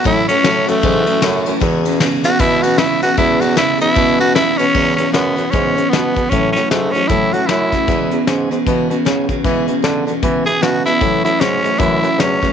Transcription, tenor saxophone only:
X:1
M:4/4
L:1/8
Q:"Swing" 1/4=153
K:E
V:1 name="Tenor saxophone"
E C2 A,4- A, | z3 F E F E F | E F E E2 F E C- | C C B,2 C2 B,2 |
C C A, C E F E2- | E2 z6 | z4 z G F E- | E E C2 E2 C2 |]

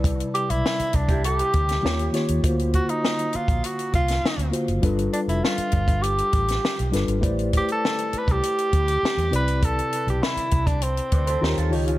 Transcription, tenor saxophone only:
X:1
M:4/4
L:1/16
Q:1/4=100
K:C
V:1 name="Tenor saxophone"
z2 G E3 D2 G6 z2 | z2 ^F ^D3 ^E2 F2 E4 z2 | z2 D E F4 G6 z2 | z2 G A3 B G6- G B2 |
A3 G E3 D C6 z2 |]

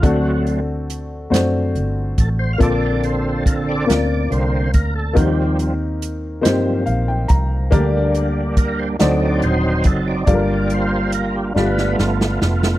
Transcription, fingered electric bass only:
X:1
M:6/8
L:1/8
Q:3/8=47
K:Gm
V:1 name="Fingered electric bass" clef=bass
D,,3 ^F,, G,,, A,,, | B,,,3 D,, C,, D,, | E,,3 G,, B,,, C,, | D,,3 D,, E,,, ^F,,, |
G,,,3 G,,, G,,, F,,, |]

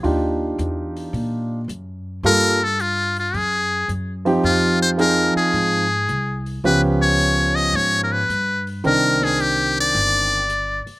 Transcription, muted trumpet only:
X:1
M:4/4
L:1/16
Q:"Swing" 1/4=109
K:Cm
V:1 name="Muted trumpet"
z16 | B2 =A2 F2 F2 ^G4 z4 | F2 c2 B2 A8 z2 | _c2 _d4 e2 d3/2 B/2 c4 z2 |
B2 A2 G2 d8 z2 |]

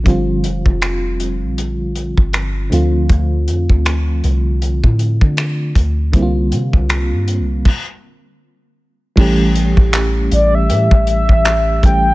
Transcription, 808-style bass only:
X:1
M:4/4
L:1/16
Q:"Swing 16ths" 1/4=79
K:Dm
V:1 name="808-style bass" clef=bass
G,,,2 F,,, F,,,4 B,,,4 G,,,3 D,,2 | D,,2 F,, D,,3 C,,3 A,,2 D,3 D,,2 | C,,2 C, C,,2 G,,3/2 C,,3/2 z8 | [K:Aphr] A,,,3 A,,,3 A,,,2 A,, A,,,2 A,,,3 A,,,2 |]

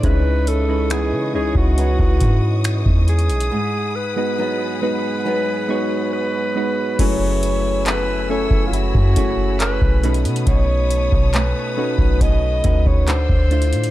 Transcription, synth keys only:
X:1
M:4/4
L:1/16
Q:1/4=69
K:F#dor
V:1 name="Synth keys"
[G,CDEB]2 z [G,CDEB]2 z [G,CDEc]4- [G,CDEc] z4 z | z3 [G,B,DFB]2 z [G,B,DFB]3 z [G,B,DFc]3 z [G,B,DFB] z | [A,CEGB]4 z2 [A,CEcg]3 z [A,CEGc]4 [A,CDFB]2- | [A,CDFB]4 z2 [A,CDFB]3 z [A,CDFB]2 z2 [A,=DE=F=c] z |]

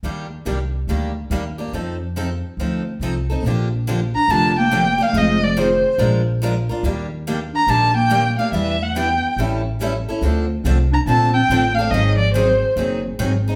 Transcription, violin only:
X:1
M:4/4
L:1/8
Q:"Swing" 1/4=142
K:Bb
V:1 name="Violin"
z8 | z8 | z3 b a g2 f | e d c2 z4 |
z3 b a g2 f | =e _g =g2 z4 | z3 b a g2 f | e d c2 z4 |]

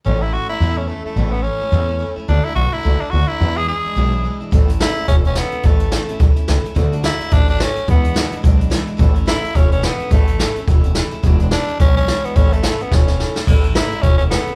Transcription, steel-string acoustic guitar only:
X:1
M:4/4
L:1/8
Q:"Swing" 1/4=214
K:A
V:1 name="Steel-string acoustic guitar"
[A,,E,A,CE] [A,CE] [E,A,CE] [A,CE] [A,,E,A,CE] [A,CE] [E,A,CE] [A,CE] | [A,,E,A,CE] [A,CE] [E,A,CE] [A,CE] [A,,E,A,CE] [A,CE] [E,A,CE] [A,CE] | [D,A,DF] [A,DF] [D,A,DF] [A,DF] [D,A,DF] [A,DF] [D,A,DF] [A,DF] | [E,,B,,E,G,DE] [E,G,DE] [E,G,DE] [E,G,DE] [E,,B,,E,G,DE] [E,G,DE] [E,G,DE] [E,G,DE] |
[A,,E,A,CE] [A,CE] [A,,E,A,CE] [A,CE] [E,A,CE] [A,CE] [A,,E,A,CE] [A,CE] | [A,,E,A,CE] [A,CE] [A,,E,A,CE] [A,CE] [E,A,CE] [A,CE] [A,,E,A,CE] [A,CE] | [D,A,DF] [A,DF] [D,A,DF] [A,DF] [D,A,DF] [A,DF] [D,A,DF] [A,DF] | [E,,B,,E,G,DE] [E,G,DE] [E,,B,,E,G,DE] [E,G,DE] [E,G,DE] [E,G,DE] [E,,B,,E,G,DE] [E,G,DE] |
[A,,E,A,CE] [A,CE] [A,,E,A,CE] [A,CE] [E,A,CE] [A,CE] [A,,E,A,CE] [A,CE] | [A,,E,A,CE] [A,CE] [A,,E,A,CE] [A,CE] [E,A,CE] [A,CE] [A,,E,A,CE] [A,CE] | [E,,B,,E,G,DE] [E,G,DE] [E,,B,,E,G,DE] [E,G,DE] [E,G,DE] [E,G,DE] [E,,B,,E,G,DE] [E,G,DE] | [A,,E,A,CE] [A,CE] [A,,E,A,CE] [A,CE] [E,A,CE] [A,CE] [A,,E,A,CE] [A,CE] |
[A,,E,A,CE] [A,CE] [A,,E,A,CE] [A,CE] [E,A,CE] [A,CE] [A,,E,A,CE] [CE] |]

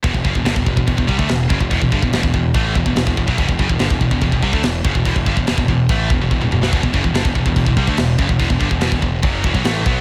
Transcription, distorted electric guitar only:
X:1
M:4/4
L:1/16
Q:1/4=144
K:Em
V:1 name="Distorted electric guitar" clef=bass
[E,,B,,] [E,,B,,] [F,,^C,] [E,,B,,] [G,,D,] [E,,B,,] [E,,B,,] [E,,B,,] [E,,B,,] [E,,B,,] [=C,G,] [D,A,] [E,,B,,]2 [F,,^C,] [E,,B,,] | [E,,B,,] [E,,B,,] [G,,D,] [E,,B,,] [E,,B,,] [E,,B,,] [E,,B,,]2 [A,,E,A,]2 [E,,B,,] [E,,B,,] [E,,B,,] [E,,B,,] [E,,B,,] [B,,F,] | [E,,B,,] [E,,B,,] [F,,^C,] [E,,B,,] [G,,D,] [E,,B,,] [E,,B,,] [E,,B,,] [E,,B,,] [E,,B,,] [=C,G,] [D,A,] [E,,B,,]2 [F,,^C,] [E,,B,,] | [E,,B,,] [E,,B,,] [G,,D,] [E,,B,,] [E,,B,,] [E,,B,,] [E,,B,,]2 [A,,E,A,]2 [E,,B,,] [E,,B,,] [E,,B,,] [E,,B,,] [E,,B,,] [B,,F,] |
[E,,B,,] [E,,B,,] [F,,^C,] [E,,B,,] [G,,D,] [E,,B,,] [E,,B,,] [E,,B,,] [E,,B,,] [E,,B,,] [=C,G,] [D,A,] [E,,B,,]2 [F,,^C,] [E,,B,,] | [E,,B,,] [E,,B,,] [G,,D,] [E,,B,,] [E,,B,,] [E,,B,,] [E,,B,,]2 [F,,^C,F,]2 [E,,B,,] [B,,F,] [A,,E,A,]2 [B,,F,B,]2 |]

